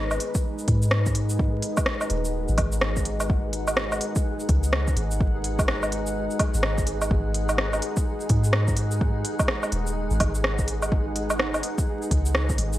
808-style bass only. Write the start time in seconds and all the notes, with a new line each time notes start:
Already playing: G#1
0.68 G#2
2.10 D#1
2.49 G#1
2.58 G#1
4.49 C#2
4.96 G#1
6.55 G#1
7.11 G#1
8.30 G#2
9.72 D#1
10.11 G#1
10.20 G#1
12.11 C#2
12.58 G#1